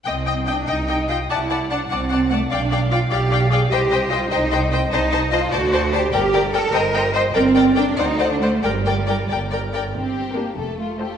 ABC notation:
X:1
M:6/8
L:1/16
Q:3/8=98
K:Cm
V:1 name="Violin section"
g2 g2 g2 g2 g2 g2 | =a2 a2 a2 a2 a2 a2 | g2 g2 g2 g2 g2 g2 | g2 g2 g2 g2 g2 g2 |
[K:Gm] a2 a2 a2 a2 a2 a2 | g2 g2 g2 g2 g2 g2 | g2 g2 g2 ^f2 f2 f2 | g2 g2 g2 g2 g2 g2 |
G6 A2 F2 G2 |]
V:2 name="Violin section"
g2 g2 g2 g2 g2 g2 | ^f2 f2 f2 f2 f2 f2 | f2 f2 f2 f2 f2 f2 | e2 e2 e2 e2 e2 e2 |
[K:Gm] e2 e2 e2 d2 d2 d2 | d2 d2 d2 e2 e2 e2 | d2 d2 d2 d2 d2 d2 | d2 d2 d2 d2 d2 d2 |
z4 B2 z4 [Ac]2 |]
V:3 name="Viola section"
e2 e2 e2 e2 e2 e2 | d2 d2 d2 d2 d2 d2 | d2 d2 d2 d2 d2 d2 | c2 c2 c2 c2 c2 c2 |
[K:Gm] c2 c2 c2 c2 c2 c2 | B2 B2 B2 c2 c2 c2 | B2 B2 B2 c2 c2 c2 | B2 B2 B2 B2 B2 B2 |
z4 [DG]2 z4 [FA]2 |]
V:4 name="Cello section"
C4 D2 E4 F2 | =E4 D2 C4 =A,2 | D4 F2 G4 A2 | G4 F2 E4 C2 |
[K:Gm] E4 F2 ^F4 G2 | G4 A2 B4 c2 | C4 D2 E3 D A,2 | G,8- G,2 z2 |
C4 B,2 A,6 |]
V:5 name="Double bass section" clef=bass
C,,6 C,,6 | C,,6 C,,6 | =B,,,6 B,,,6 | C,,6 C,,6 |
[K:Gm] C,,6 D,,6 | G,,,6 G,,,6 | G,,,6 D,,6 | G,,,6 G,,,6 |
G,,,6 F,,,6 |]